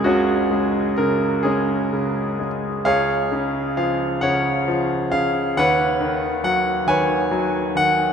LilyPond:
<<
  \new Staff \with { instrumentName = "Grand piano" } { \time 6/8 \key cis \mixolydian \tempo 4. = 44 << { fis'4 ais'8 gis'4 r8 | eis''4 eis''8 fis''4 eis''8 | fis''4 fis''8 gis''4 fis''8 | } \\ { cis'4. cis'4. | <gis' cis''>4. cis''4. | <b' cis''>4. <b' cis''>4. | } >> }
  \new Staff \with { instrumentName = "Grand piano" } { \clef bass \time 6/8 \key cis \mixolydian <cis, cis gis>8 gis8 cis8 gis8 cis8 gis8 | cis,8 cis8 eis8 cis8 eis8 cis8 | dis,8 dis8 fis8 dis8 fis8 dis8 | }
>>